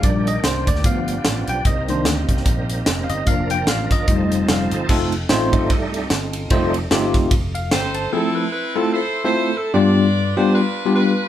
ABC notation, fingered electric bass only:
X:1
M:4/4
L:1/8
Q:"Swing" 1/4=148
K:Fmix
V:1 name="Fingered electric bass" clef=bass
B,,,2 C,, D,, G,,,2 A,,, =B,,, | C,,2 D,, C,, B,,,2 F,,, G,,, | F,,,2 A,,, G,,, F,,,2 F,,, G,,, | F,,,2 A,,,2 C,,2 G,,,2 |
F,,,2 G,,,2 F,,,2 G,,,2 | [K:Flyd] z8 | z8 |]